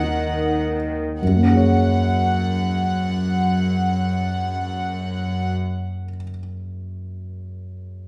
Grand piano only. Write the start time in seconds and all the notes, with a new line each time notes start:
Already playing: D#2 A#3
0.03 D#4
1.22 F#2
1.29 F#3
1.35 A#3
1.42 C#4
1.50 G#4
1.57 C#5